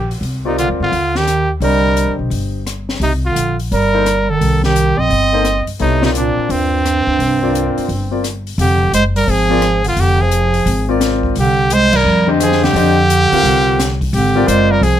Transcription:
Already playing: upright bass A#1, bass clarinet D#3, trumpet G4
0.11 open hi-hat
0.21 upright bass C2, open hi-hat
0.45 bass clarinet C3, grand piano C4 F4 A#4 D5, trumpet D#4
0.58 bass clarinet D3, trumpet F4, closed hi-hat
0.69 upright bass D#2
0.80 upright bass G2, bass clarinet D3, trumpet F4
0.92 upright bass D#2, open hi-hat
1.15 bass clarinet D#3, trumpet G4, snare
1.27 cross-stick, closed hi-hat
1.60 upright bass C2, grand piano D3 G4 C5 D#5, bass clarinet G3, trumpet A#4, open hi-hat
1.97 closed hi-hat
2.07 upright bass D2
2.19 upright bass B1
2.30 upright bass G1, open hi-hat
2.67 cross-stick, closed hi-hat
2.89 snare
3.00 upright bass C2, bass clarinet C3, trumpet D#4, open hi-hat
3.25 bass clarinet D3, trumpet F4
3.36 upright bass A#1, closed hi-hat
3.59 open hi-hat
3.71 upright bass G1, bass clarinet G3, trumpet A#4, open hi-hat
3.94 grand piano A#3 D#4 A4 C5
4.06 cross-stick, closed hi-hat
4.30 bass clarinet D#3, trumpet A4
4.41 upright bass C2, open hi-hat
4.63 bass clarinet D#3, trumpet G4, snare
4.76 closed hi-hat
4.98 upright bass A#1, bass clarinet C4, trumpet D#5
5.10 upright bass G1, open hi-hat
5.33 grand piano A#3 D#4 A4 C5
5.45 cross-stick, closed hi-hat
5.67 muted upright bass stroke, open hi-hat
5.79 upright bass C2, bass clarinet C3, grand piano B3 E4 A4 C#5, trumpet D#4, open hi-hat
6.01 bass clarinet C3, grand piano C4 F4 A#4 D5, trumpet D#4, snare
6.15 bass clarinet A#2, trumpet D4, closed hi-hat
6.37 muted upright bass stroke
6.49 upright bass D#2, bass clarinet G2, trumpet C4, open hi-hat
6.85 cross-stick, closed hi-hat
7.07 upright bass D2
7.19 upright bass C2, open hi-hat
7.42 grand piano C4 F4 A#4 D5
7.55 closed hi-hat
7.78 muted upright bass stroke, open hi-hat
7.88 upright bass G1, open hi-hat
8.11 grand piano C4 F4 A#4 D5
8.24 cross-stick, closed hi-hat
8.47 open hi-hat
8.58 upright bass F1, bass clarinet D3, trumpet G4, open hi-hat
8.93 upright bass F#1, bass clarinet G#3, trumpet C5, closed hi-hat
9.15 bass clarinet G3, trumpet A#4, open hi-hat
9.28 upright bass G#1, bass clarinet F3, trumpet G#4, open hi-hat
9.49 grand piano C4 F4 A#4 D5
9.62 cross-stick, closed hi-hat
9.84 bass clarinet D3, trumpet F4, open hi-hat
9.96 upright bass F1, bass clarinet D3, trumpet G4, open hi-hat
10.21 bass clarinet F3, trumpet G#4
10.31 closed hi-hat
10.54 open hi-hat
10.66 upright bass G#1, open hi-hat
10.89 grand piano C4 F4 A#4 D5
11.01 cross-stick, snare, closed hi-hat
11.23 kick
11.35 upright bass C2, bass clarinet D3, trumpet G4, open hi-hat
11.70 bass clarinet G#3, trumpet C5, closed hi-hat
11.93 bass clarinet G3, trumpet A#4, kick, crash
12.05 upright bass F2
12.27 grand piano D3 G4 C5 D#5
12.40 bass clarinet F3, trumpet G#4, cross-stick, closed hi-hat
12.52 snare
12.63 bass clarinet D3, trumpet G4, snare, open hi-hat
12.73 upright bass F2, grand piano D4 G4 C5 D#5, open hi-hat
13.10 closed hi-hat
13.32 upright bass D#2, grand piano C4 F4 A#4 F5, open hi-hat
13.43 upright bass C2, open hi-hat
13.79 cross-stick, snare, closed hi-hat
14.01 kick, open hi-hat
14.13 upright bass G#1, bass clarinet D3, trumpet G4, open hi-hat
14.35 grand piano C4 F4 A#4 D5
14.47 upright bass F#1, bass clarinet G#3, trumpet C5, closed hi-hat
14.71 bass clarinet G3, trumpet A#4
14.81 upright bass C2, bass clarinet F3, trumpet G#4, open hi-hat

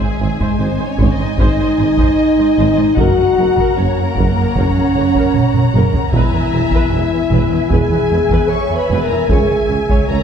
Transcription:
Already playing: french horn section G#3, violin section G#4 G#5, viola section E5
0.00 cello section G#2, viola section C5
0.19 double bass section G#1, tuba G#1, cello section G#2, viola section C5
0.40 cello section G#2, viola section C5, taiko
0.59 tuba G#1, double bass section G#1, cello section G#2, french horn section C4, viola section C5 D#5, violin section C5
0.79 cello section G#2, viola section C5
0.86 french horn section C#4, violin section C#5
0.98 tuba G#1, double bass section G#1, cello section G#2, viola section C5, taiko
1.12 french horn section D#4, violin section D#5
1.18 cello section G#2, viola section C5
1.38 tuba G#1, double bass section G#1, cello section G#2, french horn section D#4, viola section C5, violin section D#5, taiko
1.58 cello section G#2, viola section C5
1.78 tuba G#1, double bass section G#1, cello section G#2, viola section C5
1.98 cello section G#2, viola section C5, taiko
2.37 cello section G#2, viola section C5
2.57 tuba G#1, double bass section G#1, cello section G#2, viola section C5
2.77 cello section G#2, viola section C5
2.96 tuba F#1, double bass section F#1, cello section F#2, french horn section F#4, viola section A#4, violin section F#5 A#5, taiko
3.17 cello section F#2, viola section A#4
3.36 tuba F#1, double bass section F#1, cello section F#2, viola section A#4
3.56 cello section F#2, viola section A#4, taiko
3.77 tuba F#1, double bass section F#1, cello section F#2, french horn section C#4, viola section A#4 C#5, violin section C#5
3.96 cello section F#2, viola section A#4
4.03 french horn section A#3, violin section A#4
4.16 double bass section F#1, tuba F#1, cello section F#2, viola section A#4, taiko
4.30 french horn section A#3, violin section A#4
4.36 cello section F#2, viola section A#4
4.55 tuba F#1, double bass section F#1, cello section F#2, french horn section C#4, viola section A#4, violin section C#5, taiko
4.76 cello section F#2, viola section A#4
4.95 tuba F#1, double bass section F#1, cello section F#2, viola section A#4
5.14 cello section F#2, viola section A#4, taiko
5.34 taiko mid
5.54 cello section F#2, viola section A#4, taiko mid
5.73 tuba F#1, double bass section F#1, cello section F#2, viola section A#4, taiko mid
5.93 cello section F#2, viola section A#4, taiko low
6.12 tuba E1, double bass section E1, cello section E2, french horn section E4, viola section B4 E5, violin section E5 G#5, taiko
6.32 cello section E2, viola section B4
6.51 tuba E1, double bass section E1, cello section E2, viola section B4
6.71 cello section E2, viola section B4, taiko
6.91 double bass section E1, tuba E1, cello section E2, viola section B4, violin section G#5
7.10 cello section E2, viola section B4
7.30 tuba E1, double bass section E1, cello section E2, viola section B4, taiko
7.50 cello section E2, viola section B4
7.70 double bass section E1, tuba E1, cello section E2, french horn section G#4, viola section B4, violin section G#5, taiko
7.90 cello section E2, viola section B4
8.10 double bass section E1, tuba E1, cello section E2, viola section B4
8.29 cello section E2, viola section B4, taiko
8.49 french horn section C#5, violin section C#6
8.69 cello section E2, viola section B4
8.76 french horn section B4, violin section B5
8.90 double bass section E1, tuba E1, cello section E2, viola section B4
9.02 french horn section A#4, violin section A#5
9.10 cello section E2, viola section B4
9.29 double bass section C#2, tuba C#2, cello section C#2, french horn section G#4, viola section C#5, violin section G#5, taiko
9.49 cello section C#2, viola section C#5
9.68 double bass section C#2, cello section C#2, tuba C#2, viola section C#5
9.89 cello section C#2, viola section C#5, taiko
10.08 double bass section C#2, cello section C#2, tuba C#2, french horn section A#4, viola section C#5, violin section A#5

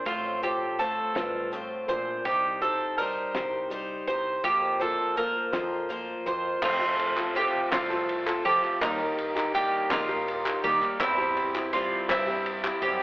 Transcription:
0.05 fretless electric bass A1, steel-string acoustic guitar A2 A3 C4 F4 C5, mandolin F4, kick, closed hi-hat
0.42 steel-string acoustic guitar C4 F4 A4 C5, mandolin G4, closed hi-hat
0.79 steel-string acoustic guitar A3 C4 F4 C5, mandolin A4, closed hi-hat
1.15 fretless electric bass A1, steel-string acoustic guitar G2 A3 C4 F4 C5, snare, closed hi-hat
1.52 steel-string acoustic guitar A2 A3 C4 F4 C5, closed hi-hat
1.88 fretless electric bass A#1, steel-string acoustic guitar A#2 C4 F4 C5, mandolin C5, closed hi-hat
2.25 fretless electric bass C2, steel-string acoustic guitar C3 G3 D#4 G4 C5, mandolin G4, kick, closed hi-hat
2.61 steel-string acoustic guitar D#4 G4 C5, mandolin A4, closed hi-hat
2.98 steel-string acoustic guitar G3 D#4 G4 C5, mandolin A#4, closed hi-hat
3.35 fretless electric bass C2, steel-string acoustic guitar C3 G3 D#4 G4 C5, snare, closed hi-hat
3.70 steel-string acoustic guitar G3 D#4 G4 C5, closed hi-hat
4.07 fretless electric bass C2, steel-string acoustic guitar D#4 G4 C5, mandolin C5, closed hi-hat
4.44 fretless electric bass F2, steel-string acoustic guitar F3 A#3 F4 C5, mandolin G4, kick, closed hi-hat
4.80 steel-string acoustic guitar A#3 F4 C5, mandolin A4, closed hi-hat
5.16 steel-string acoustic guitar F3 A#3 F4 C5, mandolin A#4, closed hi-hat
5.53 fretless electric bass F2, steel-string acoustic guitar F3 A#3 F4 C5, snare, closed hi-hat
5.89 steel-string acoustic guitar F3 A#3 F4 C5, closed hi-hat
6.26 fretless electric bass F2, steel-string acoustic guitar A#3 F4 C5, mandolin C5, closed hi-hat
6.62 upright piano F1 F2 A3 C4 F4 C5, fretless electric bass F2, steel-string acoustic guitar F3 C4 F4 A4, mandolin F4, kick, clap, crash
6.79 steel-string acoustic guitar C4 F4 A4
7.00 ride
7.17 steel-string acoustic guitar C4 F4 A4, clap
7.35 steel-string acoustic guitar F3 C4 F4 A4, mandolin G4, clap, ride
7.71 fretless electric bass C2, steel-string acoustic guitar F3 C4 F4 A4, upright piano A3 C4 F4 C5, mandolin F4, snare, clap, ride
7.90 steel-string acoustic guitar C4 F4 A4, clap
8.09 ride
8.26 steel-string acoustic guitar C4 F4 A4, clap
8.45 fretless electric bass F3, steel-string acoustic guitar F3 C4 F4 A4, mandolin G4, ride
8.64 clap
8.81 upright piano D#2 D#3 G3 A#3 D#4 A#4, fretless electric bass D#2, steel-string acoustic guitar D#3 G3 A#3 D#4 G4, mandolin D#4, kick, clap, ride
8.99 steel-string acoustic guitar A#3 D#4 G4
9.18 ride
9.35 steel-string acoustic guitar A#3 D#4 G4, clap
9.54 steel-string acoustic guitar G3 A#3 D#4 G4, mandolin G4, clap, ride
9.90 fretless electric bass A#1, steel-string acoustic guitar D#3 G3 A#3 D#4 G4, upright piano G3 A#3 D#4 A#4, mandolin F4, snare, clap, ride
10.09 steel-string acoustic guitar A#3 D#4 G4, clap
10.28 ride
10.45 steel-string acoustic guitar A#3 D#4 G4, clap
10.63 fretless electric bass D#3, steel-string acoustic guitar G3 A#3 D#4 G4, mandolin G4, ride
10.82 clap
11.00 upright piano E2 C3 G3 C4 E4 C5, fretless electric bass E2, steel-string acoustic guitar E3 G3 C4 E4 G4, mandolin E4, kick, clap, ride
11.18 steel-string acoustic guitar C4 E4 G4
11.37 ride
11.54 steel-string acoustic guitar C4 E4 G4, clap
11.73 steel-string acoustic guitar G3 C4 E4 G4, mandolin F4, clap, ride
12.09 fretless electric bass G2, steel-string acoustic guitar E3 G3 C4 E4 G4, upright piano G3 C4 E4 C5, mandolin E4, snare, clap, ride
12.27 steel-string acoustic guitar C4 E4 G4, clap
12.46 ride
12.64 steel-string acoustic guitar C4 E4 G4, clap
12.82 fretless electric bass F#2, steel-string acoustic guitar G3 C4 E4, mandolin G4, ride
12.86 steel-string acoustic guitar G4

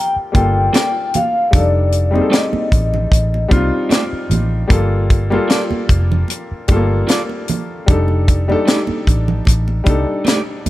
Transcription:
Already playing: grand piano G3 A#3 F4 G4 A4, vibraphone G5
0.16 muted fingered electric bass stroke
0.32 fingered electric bass G1, grand piano G3 A#3 F4 A4, vibraphone G5, kick, closed hi-hat, high conga
0.73 clean electric guitar A#3 F4 A4 D5, snare, closed hi-hat, high conga
1.14 vibraphone F5, closed hi-hat, high conga, low conga
1.51 fingered electric bass F1, grand piano G3 D4 D#4, vibraphone D5, kick, closed hi-hat, low conga
1.55 grand piano A4
1.92 closed hi-hat
2.11 grand piano G3 C4 D#4
2.15 grand piano G#4, high conga
2.21 grand piano A4
2.30 clean electric guitar A3 D#4 G4 D5, vibraphone D#5, snare, closed hi-hat
2.53 muted fingered electric bass stroke, muted conga, high conga
2.72 fingered electric bass A1, kick, closed hi-hat
2.94 low conga
3.12 fingered electric bass A1, kick, closed hi-hat
3.34 muted conga
3.48 fingered electric bass C2, grand piano G3 C4 D#4 F4, kick, closed hi-hat, high conga
3.89 clean electric guitar A3 D#4 G4 D5, snare, closed hi-hat, high conga
4.13 muted fingered electric bass stroke
4.30 fingered electric bass A1, closed hi-hat, high conga, low conga
4.67 fingered electric bass G1, grand piano G3 A#3 F4 A4, kick, closed hi-hat, low conga
5.10 kick, closed hi-hat
5.30 grand piano G3 A#3 F4 A4, high conga
5.48 clean electric guitar A#3 F4 A4 D5, snare, closed hi-hat, muted conga
5.71 muted fingered electric bass stroke, high conga
5.89 fingered electric bass F1, kick, closed hi-hat
6.12 low conga
6.28 closed hi-hat, muted conga
6.51 muted fingered electric bass stroke
6.68 fingered electric bass G1, grand piano G3 A3 F4, kick, closed hi-hat, high conga
6.72 grand piano A4
6.76 grand piano A#3
7.07 clean electric guitar A#3 F4 A4 D5, snare, closed hi-hat, muted conga, high conga
7.29 muted conga
7.48 closed hi-hat, high conga, low conga
7.86 fingered electric bass F1, grand piano G3 D4 D#4, kick, closed hi-hat, low conga
7.90 grand piano A4
8.08 muted conga
8.28 kick, closed hi-hat
8.48 grand piano G3 D4 D#4 A4, high conga
8.66 clean electric guitar A3 D#4 G4 D5, snare, closed hi-hat
8.87 muted fingered electric bass stroke, high conga
9.07 fingered electric bass A1, kick, closed hi-hat
9.28 low conga
9.45 fingered electric bass A1, kick, closed hi-hat, muted conga
9.68 muted conga
9.84 fingered electric bass C2, grand piano G3 D4 D#4, kick, closed hi-hat, high conga
9.88 grand piano A4
10.25 clean electric guitar A3 D#4 G4 D5, snare, closed hi-hat, high conga
10.66 closed hi-hat, high conga, low conga

